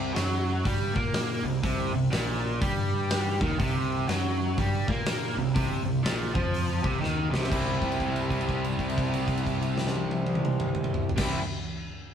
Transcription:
Already playing: C2 C3
0.14 F#2 F#3, snare, open hi-hat
0.64 G2 G3, kick, open hi-hat
0.95 A#2 A#3, kick
1.14 snare, open hi-hat
1.44 C2 C3
1.64 C2 C3, kick, open hi-hat
1.94 C2 C3
2.11 A#1 A#2, snare, open hi-hat
2.61 G2 G3, kick, open hi-hat
3.10 snare, open hi-hat
3.41 D#2 D#3, kick
3.59 C2 C3, kick, open hi-hat
4.08 F#2 F#3, snare, open hi-hat
4.58 G2 G3, kick, open hi-hat
4.88 A#2 A#3, kick
5.06 snare, open hi-hat
5.37 C2 C3
5.55 C2 C3, kick, open hi-hat
5.84 C2 C3
6.03 A#1 A#2, snare, open hi-hat
6.35 F2 F3, kick
6.54 open hi-hat
6.84 C2 C3, kick
7.01 D#2 D#3, snare
7.31 C2 C3, snare
7.43 snare
7.48 C3 G3 C4, kick
7.52 C2 E4, crash
7.82 kick, crash
7.92 crash
8.00 kick, crash
8.16 crash
8.30 kick, crash
8.41 crash
8.49 kick, crash
8.64 crash
8.79 kick, crash
8.89 crash
8.98 kick, crash
9.14 crash
9.28 kick, crash
9.37 crash
9.46 kick, crash
9.62 crash
9.78 snare
9.87 snare
9.96 high tom
10.11 high tom
10.26 high tom
10.35 mid tom
10.45 mid tom
10.60 mid tom
10.75 mid tom
10.84 mid tom
10.94 floor tom
11.09 floor tom
11.17 C2 C3 G3 C4, kick, snare, crash
11.21 E4

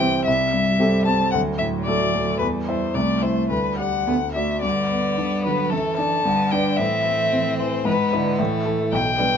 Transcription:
Already playing: C2 G2 E3 E4 G4 G5
0.00 C4
0.25 C2 G3 E5
0.54 G2
0.79 C4 G4 A4
1.05 C4 A5
1.31 D2 F#3 F#5
1.58 A2 E5
1.86 A3 F#4 A4 D5
2.14 A3
2.39 E2 G3 B4
2.67 E4 C5 E5
2.94 C2 A3 D5
3.22 E4 C5 E5
3.49 D2 G3 B4
3.78 G4 D5 F#5
4.07 D2 B3
4.34 A3 F#4 D5 E5
4.62 G2 D3 B3 D5
4.90 B3
5.18 G3 D4
5.44 D3 F#3 B4
5.70 F#2 E3 A3 A4
5.98 D4 D5 A5
6.25 G2 D3 B3
6.51 D4 B4 G5
6.77 A2 E3 C4 E5
7.06 A3
7.32 C4
7.58 E3 C5
7.85 G#2 E3 B3 B4
8.13 D3 E4 B4
8.39 A2 E3 A3
8.65 E4 A4
8.93 B1 G5
9.18 G3 B3 D4

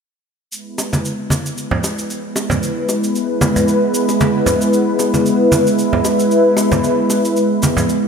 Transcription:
0.52 G#3 B3 E4 B4, shaker
0.78 high bongo, shaker
0.93 high bongo, high conga, shaker
1.05 shaker
1.30 high bongo, high conga, shaker
1.46 shaker
1.58 shaker
1.71 low conga
1.84 high bongo, shaker
1.99 shaker
2.10 shaker
2.36 high bongo, shaker
2.50 high conga, low conga, shaker
2.63 shaker
2.89 high bongo, shaker
3.04 shaker
3.16 shaker
3.41 high bongo, high conga, shaker
3.56 low conga, shaker
3.68 shaker
3.95 shaker
4.09 high bongo, shaker
4.21 high conga, shaker
4.46 low conga, shaker
4.62 shaker
4.73 shaker
4.99 high bongo, shaker
5.14 high bongo, high conga, shaker
5.26 shaker
5.52 high bongo, high conga, shaker
5.67 shaker
5.79 shaker
5.93 low conga
6.05 high bongo, shaker
6.20 shaker
6.31 shaker
6.57 high bongo, shaker
6.72 high conga, low conga, shaker
6.84 shaker
7.10 high bongo, shaker
7.25 shaker
7.37 shaker
7.62 high bongo, high conga, shaker
7.77 low conga, shaker
7.89 shaker

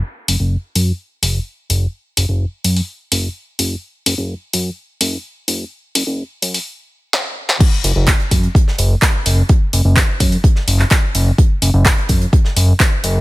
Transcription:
0.28 F#1, open hi-hat
0.40 F#1
0.75 F#2, open hi-hat
1.22 F#1, open hi-hat
1.70 F#1, open hi-hat
2.17 F#1, open hi-hat
2.29 F#1
2.64 F#2, open hi-hat
2.77 open hi-hat
3.12 F#1, open hi-hat
3.59 F#1, open hi-hat
4.06 F#1, open hi-hat
4.18 F#1
4.53 F#2, open hi-hat
5.01 F#1, open hi-hat
5.48 F#1, open hi-hat
5.95 F#1, open hi-hat
6.07 F#1
6.42 F#2, open hi-hat
6.54 open hi-hat
7.13 snare
7.49 snare
7.60 kick, closed hi-hat, crash
7.84 F#1, closed hi-hat, open hi-hat
7.96 F#1
8.08 kick, snare, clap, closed hi-hat
8.20 closed hi-hat
8.31 F#2, kick, closed hi-hat, open hi-hat
8.43 closed hi-hat
8.55 kick, closed hi-hat
8.68 snare
8.78 F#1, closed hi-hat, open hi-hat
9.02 kick, snare, clap, closed hi-hat
9.26 F#1, closed hi-hat, open hi-hat
9.49 kick, closed hi-hat
9.73 F#1, closed hi-hat, open hi-hat
9.85 F#1
9.96 kick, snare, clap, closed hi-hat
10.20 F#2, kick, closed hi-hat, open hi-hat
10.32 closed hi-hat, open hi-hat
10.44 kick, closed hi-hat
10.56 snare
10.68 F#1, closed hi-hat, open hi-hat
10.79 clap
10.91 kick, snare, clap, closed hi-hat
11.15 F#1, closed hi-hat, open hi-hat
11.38 kick, closed hi-hat
11.62 F#1, closed hi-hat, open hi-hat
11.74 F#1
11.85 kick, snare, clap, closed hi-hat
11.98 closed hi-hat
12.09 F#2, kick, closed hi-hat, open hi-hat
12.21 closed hi-hat
12.33 kick, closed hi-hat
12.45 snare
12.56 F#1, closed hi-hat, open hi-hat
12.80 kick, snare, clap, closed hi-hat
13.04 F#1, closed hi-hat, open hi-hat

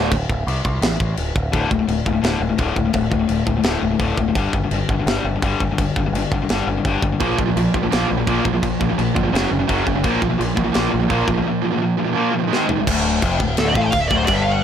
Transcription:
Already playing: D2 A2 D3
0.11 D1, kick, china
0.30 D1, kick
0.47 C2, china
0.65 C2, kick
0.82 A1, snare, china
1.00 A1, kick
1.17 D1, china
1.35 D1, kick
1.52 D1 D2 A2 D3, kick, china
1.70 D1 D2 A2, kick
1.79 D2 A2
1.87 D1 D2 A2, china
2.06 D1 D2 A2, kick
2.13 D2 A2
2.22 D1 D2 A2 D3, snare, china
2.39 D1 D2 A2
2.49 D2 A2
2.58 D1 D2 A2 D3, kick, china
2.76 D1 D2 A2, kick
2.85 D2 A2
2.93 D1 D2 A2, kick, china
3.10 D1 D2 A2, kick
3.19 D2 A2
3.28 D1 D2 A2, china
3.46 D1 D2 A2, kick
3.57 D2 A2
3.63 D1 D2 A2 D3, snare, china
3.82 D1 D2 A2
3.91 D2 A2
3.99 D1 D2 A2 D3, kick, china
4.17 D1 D2 A2, kick
4.28 D2 A2
4.35 G1 G2 D3 G3, kick, china
4.53 G1 G2 D3, kick
4.64 G2 D3
4.71 G1 G2 D3, china
4.89 G1 G2 D3, kick
4.99 G2 D3
5.06 G1 G2 D3 G3, snare, china
5.25 G1 G2 D3
5.36 G2 D3
5.42 G1 G2 D3 G3, kick, china
5.60 G1 G2 D3, kick
5.71 G2 D3
5.78 G1 G2 D3, kick, china
5.96 G1 G2 D3, kick
6.06 G2 D3
6.13 G1 G2 D3, china
6.32 G1 G2 D3, kick
6.42 G2 D3
6.49 G1 G2 D3 G3, snare, china
6.67 G1 G2 D3
6.77 G2 D3
6.85 G1 G2 D3 G3, kick, china
7.02 G1 G2 D3, kick
7.12 G2 D3
7.20 A#1 A#2 F3 A#3, kick, china
7.39 A#1 A#2 F3, kick
7.48 A#2 F3
7.56 A#1 A#2 F3, china
7.74 A#1 A#2 F3, kick
7.83 A#2 F3
7.92 A#1 A#2 F3 A#3, snare, china
8.10 A#1 A#2 F3
8.18 A#2 F3
8.27 A#1 A#2 F3 A#3, kick, china
8.45 A#1 A#2 F3, kick
8.54 A#2 F3
8.63 A#1 A#2 F3, kick, china
8.80 A#1 A#2 F3, kick
8.90 A#2 F3
8.98 A#1 A#2 F3, china
9.15 G1 A#2 F3, kick
9.25 A#2 F3
9.32 F#1 F#2 C#3 F#3, china
9.36 snare
9.51 F#1 F#2 C#3
9.59 F#2 C#3
9.68 F#1 F#2 C#3 F#3, kick, china
9.85 F#1 F#2 C#3, kick
9.95 F#2 C#3
10.04 A#1 A#2 F3 A#3, kick, china
10.21 A#1 A#2 F3, kick
10.30 A#2 F3
10.38 A#1 A#2 F3, china
10.55 A#1 A#2 F3, kick
10.64 A#2 F3
10.74 A#1 A#2 F3 A#3, snare, china
10.93 A#1 A#2 F3
11.03 A#2 F3
11.10 A#1 A#2 F3 A#3, kick, china
11.28 A#1 A#2 F3, kick
11.37 A#2 F3
11.42 A#2 F3
11.47 A#2 F3
11.64 A#2 F3
11.73 A#2 F3
11.82 A#2 F3
11.99 A#2 F3
12.07 A#2 F3
12.16 A#2 F3 A#3
12.34 A#2 F3
12.39 A#2 F3
12.44 G#2 A#2 F3
12.48 D#3 G#3
12.52 G#2 D#3 G#3, snare
12.66 G#2 D#3, floor tom
12.71 G#2 D#3
12.76 D#3
12.80 G#2 D#3
12.87 D1 D2, kick, crash
13.22 F1 F2, kick, crash
13.40 D1 D2, kick
13.57 D1 D2 A4, snare, crash
13.67 D5
13.75 A1 A2 F5, kick
13.81 A5
13.86 G5
13.91 D1 D2 F5, kick, crash
14.00 E5
14.08 D1 D2 D5, kick
14.17 C5
14.25 G1 G2 D5, kick, crash
14.34 E5
14.43 F5
14.52 F#5

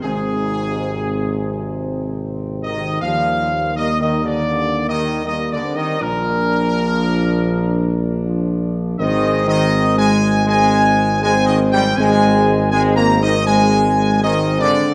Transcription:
0.02 G#1 G#2 C3 C4 G#4
2.64 D#3 D#5
3.02 D#2 F3 G3 A#3 F5
3.76 D#3 G3 A#3 D#5
4.01 D#3 D#5
4.25 D3 D5
4.89 D#3 D#5
5.25 D#3 G3 A#3 D#5
5.52 D3 D5
5.63 C4
5.76 D#3 D#5
6.00 A#1 A#2 F3 D4 A#4
8.25 F3
8.99 G#1 D#3 G#3 C4 D#5
9.47 D#3 D#5
9.98 G#3 G#5
10.46 G#3 C4 G#5
11.22 G#3 C4 G#5
11.46 D#3 D#5
11.72 G3 G5
11.97 G#1 G#3 C4 G#5
12.70 G#3 C4 G#5
12.96 A#3 A#5
13.22 D#3 D#5
13.47 G#3 C4 G#5
14.23 D#3 G#3 C4 D#5
14.60 D3 D5

